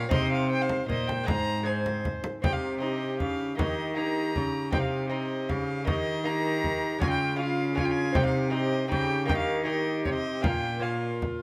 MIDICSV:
0, 0, Header, 1, 6, 480
1, 0, Start_track
1, 0, Tempo, 382653
1, 153, Time_signature, 3, 2, 24, 8
1, 14327, End_track
2, 0, Start_track
2, 0, Title_t, "Violin"
2, 0, Program_c, 0, 40
2, 0, Note_on_c, 0, 77, 94
2, 145, Note_off_c, 0, 77, 0
2, 153, Note_on_c, 0, 75, 100
2, 387, Note_off_c, 0, 75, 0
2, 402, Note_on_c, 0, 77, 87
2, 631, Note_off_c, 0, 77, 0
2, 648, Note_on_c, 0, 79, 98
2, 770, Note_on_c, 0, 77, 81
2, 789, Note_off_c, 0, 79, 0
2, 1104, Note_off_c, 0, 77, 0
2, 1112, Note_on_c, 0, 75, 89
2, 1350, Note_on_c, 0, 79, 91
2, 1369, Note_off_c, 0, 75, 0
2, 1587, Note_on_c, 0, 82, 109
2, 1606, Note_off_c, 0, 79, 0
2, 2081, Note_on_c, 0, 80, 78
2, 2100, Note_off_c, 0, 82, 0
2, 2568, Note_off_c, 0, 80, 0
2, 3054, Note_on_c, 0, 79, 91
2, 3174, Note_on_c, 0, 77, 79
2, 3193, Note_off_c, 0, 79, 0
2, 3517, Note_off_c, 0, 77, 0
2, 3525, Note_on_c, 0, 75, 76
2, 3994, Note_off_c, 0, 75, 0
2, 4002, Note_on_c, 0, 77, 80
2, 4479, Note_off_c, 0, 77, 0
2, 4489, Note_on_c, 0, 75, 82
2, 4966, Note_off_c, 0, 75, 0
2, 4979, Note_on_c, 0, 82, 85
2, 5917, Note_off_c, 0, 82, 0
2, 5927, Note_on_c, 0, 79, 92
2, 6034, Note_off_c, 0, 79, 0
2, 6042, Note_on_c, 0, 77, 70
2, 6384, Note_off_c, 0, 77, 0
2, 6391, Note_on_c, 0, 75, 74
2, 6887, Note_on_c, 0, 77, 79
2, 6906, Note_off_c, 0, 75, 0
2, 7357, Note_off_c, 0, 77, 0
2, 7364, Note_on_c, 0, 75, 96
2, 7849, Note_on_c, 0, 82, 98
2, 7868, Note_off_c, 0, 75, 0
2, 8795, Note_off_c, 0, 82, 0
2, 8802, Note_on_c, 0, 80, 96
2, 8901, Note_off_c, 0, 80, 0
2, 8908, Note_on_c, 0, 79, 95
2, 9259, Note_off_c, 0, 79, 0
2, 9267, Note_on_c, 0, 77, 94
2, 9739, Note_off_c, 0, 77, 0
2, 9748, Note_on_c, 0, 80, 89
2, 9848, Note_on_c, 0, 79, 81
2, 9866, Note_off_c, 0, 80, 0
2, 9919, Note_on_c, 0, 80, 96
2, 9938, Note_off_c, 0, 79, 0
2, 10232, Note_on_c, 0, 79, 106
2, 10251, Note_off_c, 0, 80, 0
2, 10350, Note_off_c, 0, 79, 0
2, 10357, Note_on_c, 0, 77, 83
2, 10693, Note_off_c, 0, 77, 0
2, 10701, Note_on_c, 0, 75, 90
2, 11161, Note_off_c, 0, 75, 0
2, 11169, Note_on_c, 0, 79, 90
2, 11624, Note_off_c, 0, 79, 0
2, 11632, Note_on_c, 0, 79, 95
2, 11751, Note_off_c, 0, 79, 0
2, 11758, Note_on_c, 0, 77, 87
2, 12115, Note_off_c, 0, 77, 0
2, 12123, Note_on_c, 0, 75, 81
2, 12597, Note_off_c, 0, 75, 0
2, 12604, Note_on_c, 0, 73, 83
2, 12710, Note_off_c, 0, 73, 0
2, 12717, Note_on_c, 0, 75, 86
2, 13077, Note_on_c, 0, 79, 96
2, 13095, Note_off_c, 0, 75, 0
2, 13575, Note_on_c, 0, 77, 72
2, 13594, Note_off_c, 0, 79, 0
2, 14307, Note_off_c, 0, 77, 0
2, 14327, End_track
3, 0, Start_track
3, 0, Title_t, "Viola"
3, 0, Program_c, 1, 41
3, 0, Note_on_c, 1, 73, 81
3, 129, Note_off_c, 1, 73, 0
3, 147, Note_on_c, 1, 72, 67
3, 594, Note_off_c, 1, 72, 0
3, 614, Note_on_c, 1, 72, 66
3, 1092, Note_off_c, 1, 72, 0
3, 1099, Note_on_c, 1, 72, 65
3, 1579, Note_off_c, 1, 72, 0
3, 1597, Note_on_c, 1, 72, 62
3, 2073, Note_off_c, 1, 72, 0
3, 2083, Note_on_c, 1, 72, 66
3, 2798, Note_off_c, 1, 72, 0
3, 3041, Note_on_c, 1, 67, 50
3, 3495, Note_off_c, 1, 67, 0
3, 3548, Note_on_c, 1, 67, 63
3, 4483, Note_off_c, 1, 67, 0
3, 4505, Note_on_c, 1, 67, 46
3, 4958, Note_off_c, 1, 67, 0
3, 4965, Note_on_c, 1, 67, 63
3, 5910, Note_off_c, 1, 67, 0
3, 5924, Note_on_c, 1, 67, 50
3, 6385, Note_off_c, 1, 67, 0
3, 6392, Note_on_c, 1, 67, 62
3, 7337, Note_off_c, 1, 67, 0
3, 7358, Note_on_c, 1, 67, 52
3, 7836, Note_off_c, 1, 67, 0
3, 7849, Note_on_c, 1, 67, 67
3, 8806, Note_on_c, 1, 65, 56
3, 8825, Note_off_c, 1, 67, 0
3, 9274, Note_off_c, 1, 65, 0
3, 9282, Note_on_c, 1, 65, 62
3, 9739, Note_off_c, 1, 65, 0
3, 9746, Note_on_c, 1, 65, 67
3, 10229, Note_on_c, 1, 67, 57
3, 10247, Note_off_c, 1, 65, 0
3, 10696, Note_off_c, 1, 67, 0
3, 10704, Note_on_c, 1, 67, 64
3, 11173, Note_off_c, 1, 67, 0
3, 11180, Note_on_c, 1, 67, 66
3, 11649, Note_off_c, 1, 67, 0
3, 11657, Note_on_c, 1, 67, 53
3, 12127, Note_off_c, 1, 67, 0
3, 12142, Note_on_c, 1, 67, 64
3, 13086, Note_on_c, 1, 65, 51
3, 13105, Note_off_c, 1, 67, 0
3, 13579, Note_off_c, 1, 65, 0
3, 13589, Note_on_c, 1, 65, 55
3, 14299, Note_off_c, 1, 65, 0
3, 14327, End_track
4, 0, Start_track
4, 0, Title_t, "Lute"
4, 0, Program_c, 2, 24
4, 111, Note_on_c, 2, 60, 55
4, 130, Note_on_c, 2, 63, 59
4, 147, Note_on_c, 2, 48, 69
4, 1057, Note_off_c, 2, 48, 0
4, 1109, Note_on_c, 2, 46, 56
4, 1529, Note_off_c, 2, 60, 0
4, 1539, Note_off_c, 2, 63, 0
4, 1545, Note_off_c, 2, 46, 0
4, 1550, Note_on_c, 2, 56, 54
4, 1565, Note_on_c, 2, 60, 55
4, 1580, Note_on_c, 2, 63, 47
4, 1595, Note_on_c, 2, 44, 57
4, 2032, Note_off_c, 2, 56, 0
4, 2047, Note_on_c, 2, 56, 54
4, 2048, Note_off_c, 2, 60, 0
4, 2060, Note_off_c, 2, 63, 0
4, 2063, Note_on_c, 2, 60, 54
4, 2077, Note_on_c, 2, 63, 51
4, 2762, Note_off_c, 2, 44, 0
4, 3007, Note_off_c, 2, 56, 0
4, 3015, Note_off_c, 2, 60, 0
4, 3023, Note_off_c, 2, 63, 0
4, 3034, Note_on_c, 2, 60, 44
4, 3052, Note_on_c, 2, 63, 46
4, 3070, Note_on_c, 2, 48, 47
4, 3501, Note_off_c, 2, 60, 0
4, 3516, Note_on_c, 2, 60, 47
4, 3517, Note_off_c, 2, 63, 0
4, 3533, Note_on_c, 2, 63, 45
4, 3974, Note_off_c, 2, 48, 0
4, 4033, Note_on_c, 2, 49, 49
4, 4457, Note_off_c, 2, 49, 0
4, 4457, Note_off_c, 2, 60, 0
4, 4466, Note_off_c, 2, 63, 0
4, 4476, Note_on_c, 2, 58, 43
4, 4493, Note_on_c, 2, 63, 42
4, 4509, Note_on_c, 2, 51, 50
4, 4947, Note_off_c, 2, 58, 0
4, 4962, Note_on_c, 2, 58, 46
4, 4963, Note_off_c, 2, 63, 0
4, 4978, Note_on_c, 2, 63, 45
4, 5414, Note_off_c, 2, 51, 0
4, 5435, Note_off_c, 2, 58, 0
4, 5477, Note_on_c, 2, 49, 48
4, 5898, Note_off_c, 2, 49, 0
4, 5907, Note_off_c, 2, 63, 0
4, 5918, Note_on_c, 2, 60, 47
4, 5933, Note_on_c, 2, 63, 44
4, 5951, Note_on_c, 2, 48, 45
4, 6376, Note_off_c, 2, 60, 0
4, 6391, Note_off_c, 2, 63, 0
4, 6391, Note_on_c, 2, 60, 51
4, 6406, Note_on_c, 2, 63, 48
4, 6847, Note_off_c, 2, 48, 0
4, 6895, Note_on_c, 2, 49, 50
4, 7322, Note_off_c, 2, 49, 0
4, 7327, Note_off_c, 2, 60, 0
4, 7334, Note_off_c, 2, 63, 0
4, 7338, Note_on_c, 2, 58, 48
4, 7357, Note_on_c, 2, 63, 43
4, 7371, Note_on_c, 2, 51, 54
4, 7811, Note_off_c, 2, 58, 0
4, 7825, Note_off_c, 2, 63, 0
4, 7826, Note_on_c, 2, 58, 53
4, 7840, Note_on_c, 2, 63, 51
4, 8756, Note_off_c, 2, 51, 0
4, 8761, Note_on_c, 2, 56, 48
4, 8763, Note_off_c, 2, 58, 0
4, 8770, Note_off_c, 2, 63, 0
4, 8779, Note_on_c, 2, 61, 48
4, 8795, Note_on_c, 2, 65, 46
4, 8813, Note_on_c, 2, 49, 58
4, 9219, Note_off_c, 2, 56, 0
4, 9234, Note_on_c, 2, 56, 53
4, 9237, Note_off_c, 2, 61, 0
4, 9252, Note_off_c, 2, 65, 0
4, 9252, Note_on_c, 2, 61, 53
4, 9267, Note_on_c, 2, 65, 51
4, 9703, Note_off_c, 2, 56, 0
4, 9714, Note_off_c, 2, 61, 0
4, 9718, Note_on_c, 2, 56, 51
4, 9729, Note_on_c, 2, 61, 51
4, 9730, Note_off_c, 2, 65, 0
4, 9745, Note_on_c, 2, 65, 51
4, 10184, Note_off_c, 2, 49, 0
4, 10185, Note_off_c, 2, 61, 0
4, 10190, Note_on_c, 2, 60, 52
4, 10196, Note_off_c, 2, 56, 0
4, 10203, Note_off_c, 2, 65, 0
4, 10208, Note_on_c, 2, 63, 50
4, 10221, Note_on_c, 2, 67, 58
4, 10240, Note_on_c, 2, 48, 64
4, 10648, Note_off_c, 2, 60, 0
4, 10661, Note_off_c, 2, 63, 0
4, 10663, Note_on_c, 2, 60, 52
4, 10676, Note_on_c, 2, 63, 52
4, 10677, Note_off_c, 2, 67, 0
4, 10692, Note_on_c, 2, 67, 56
4, 11126, Note_off_c, 2, 60, 0
4, 11137, Note_off_c, 2, 63, 0
4, 11139, Note_off_c, 2, 48, 0
4, 11141, Note_on_c, 2, 60, 48
4, 11152, Note_on_c, 2, 63, 50
4, 11155, Note_off_c, 2, 67, 0
4, 11170, Note_on_c, 2, 67, 53
4, 11186, Note_on_c, 2, 49, 61
4, 11604, Note_off_c, 2, 60, 0
4, 11609, Note_on_c, 2, 58, 56
4, 11611, Note_off_c, 2, 63, 0
4, 11614, Note_off_c, 2, 49, 0
4, 11626, Note_on_c, 2, 63, 48
4, 11629, Note_off_c, 2, 67, 0
4, 11644, Note_on_c, 2, 67, 49
4, 11660, Note_on_c, 2, 51, 60
4, 12072, Note_off_c, 2, 58, 0
4, 12087, Note_on_c, 2, 58, 49
4, 12088, Note_off_c, 2, 63, 0
4, 12101, Note_off_c, 2, 67, 0
4, 12103, Note_on_c, 2, 63, 52
4, 12116, Note_on_c, 2, 67, 53
4, 12568, Note_off_c, 2, 51, 0
4, 12578, Note_off_c, 2, 58, 0
4, 12623, Note_on_c, 2, 48, 53
4, 13054, Note_off_c, 2, 63, 0
4, 13055, Note_off_c, 2, 48, 0
4, 13055, Note_on_c, 2, 58, 40
4, 13061, Note_off_c, 2, 67, 0
4, 13071, Note_on_c, 2, 61, 43
4, 13088, Note_on_c, 2, 65, 45
4, 13099, Note_on_c, 2, 46, 51
4, 13527, Note_off_c, 2, 58, 0
4, 13542, Note_on_c, 2, 58, 47
4, 13543, Note_off_c, 2, 61, 0
4, 13555, Note_off_c, 2, 65, 0
4, 13558, Note_on_c, 2, 61, 44
4, 13570, Note_on_c, 2, 65, 46
4, 14260, Note_off_c, 2, 46, 0
4, 14327, Note_off_c, 2, 58, 0
4, 14327, Note_off_c, 2, 61, 0
4, 14327, Note_off_c, 2, 65, 0
4, 14327, End_track
5, 0, Start_track
5, 0, Title_t, "Cello"
5, 0, Program_c, 3, 42
5, 160, Note_on_c, 3, 48, 87
5, 1064, Note_off_c, 3, 48, 0
5, 1119, Note_on_c, 3, 46, 65
5, 1600, Note_on_c, 3, 44, 75
5, 1619, Note_off_c, 3, 46, 0
5, 2815, Note_off_c, 3, 44, 0
5, 3057, Note_on_c, 3, 48, 64
5, 4018, Note_on_c, 3, 49, 58
5, 4037, Note_off_c, 3, 48, 0
5, 4497, Note_off_c, 3, 49, 0
5, 4505, Note_on_c, 3, 51, 67
5, 5466, Note_on_c, 3, 49, 59
5, 5484, Note_off_c, 3, 51, 0
5, 5944, Note_on_c, 3, 48, 63
5, 5963, Note_off_c, 3, 49, 0
5, 6889, Note_on_c, 3, 49, 59
5, 6908, Note_off_c, 3, 48, 0
5, 7373, Note_on_c, 3, 51, 70
5, 7392, Note_off_c, 3, 49, 0
5, 8807, Note_off_c, 3, 51, 0
5, 8815, Note_on_c, 3, 49, 75
5, 10240, Note_on_c, 3, 48, 73
5, 10259, Note_off_c, 3, 49, 0
5, 11183, Note_off_c, 3, 48, 0
5, 11191, Note_on_c, 3, 49, 71
5, 11667, Note_on_c, 3, 51, 78
5, 11685, Note_off_c, 3, 49, 0
5, 12622, Note_on_c, 3, 48, 65
5, 12641, Note_off_c, 3, 51, 0
5, 13108, Note_on_c, 3, 46, 69
5, 13127, Note_off_c, 3, 48, 0
5, 14315, Note_off_c, 3, 46, 0
5, 14327, End_track
6, 0, Start_track
6, 0, Title_t, "Frame drum"
6, 140, Note_on_c, 9, 64, 78
6, 266, Note_off_c, 9, 64, 0
6, 872, Note_on_c, 9, 64, 51
6, 997, Note_off_c, 9, 64, 0
6, 1123, Note_on_c, 9, 64, 46
6, 1249, Note_off_c, 9, 64, 0
6, 1370, Note_on_c, 9, 64, 55
6, 1495, Note_off_c, 9, 64, 0
6, 1608, Note_on_c, 9, 64, 74
6, 1733, Note_off_c, 9, 64, 0
6, 2334, Note_on_c, 9, 64, 45
6, 2459, Note_off_c, 9, 64, 0
6, 2574, Note_on_c, 9, 64, 51
6, 2699, Note_off_c, 9, 64, 0
6, 2808, Note_on_c, 9, 64, 55
6, 2933, Note_off_c, 9, 64, 0
6, 3059, Note_on_c, 9, 64, 73
6, 3185, Note_off_c, 9, 64, 0
6, 4017, Note_on_c, 9, 64, 44
6, 4142, Note_off_c, 9, 64, 0
6, 4504, Note_on_c, 9, 64, 71
6, 4630, Note_off_c, 9, 64, 0
6, 5466, Note_on_c, 9, 64, 46
6, 5591, Note_off_c, 9, 64, 0
6, 5928, Note_on_c, 9, 64, 72
6, 6054, Note_off_c, 9, 64, 0
6, 6893, Note_on_c, 9, 64, 49
6, 7018, Note_off_c, 9, 64, 0
6, 7368, Note_on_c, 9, 64, 65
6, 7493, Note_off_c, 9, 64, 0
6, 8330, Note_on_c, 9, 64, 44
6, 8455, Note_off_c, 9, 64, 0
6, 8800, Note_on_c, 9, 64, 68
6, 8925, Note_off_c, 9, 64, 0
6, 9753, Note_on_c, 9, 64, 45
6, 9878, Note_off_c, 9, 64, 0
6, 10223, Note_on_c, 9, 64, 75
6, 10349, Note_off_c, 9, 64, 0
6, 11187, Note_on_c, 9, 64, 47
6, 11312, Note_off_c, 9, 64, 0
6, 11657, Note_on_c, 9, 64, 66
6, 11782, Note_off_c, 9, 64, 0
6, 12612, Note_on_c, 9, 64, 43
6, 12737, Note_off_c, 9, 64, 0
6, 13094, Note_on_c, 9, 64, 71
6, 13220, Note_off_c, 9, 64, 0
6, 14077, Note_on_c, 9, 64, 48
6, 14202, Note_off_c, 9, 64, 0
6, 14327, End_track
0, 0, End_of_file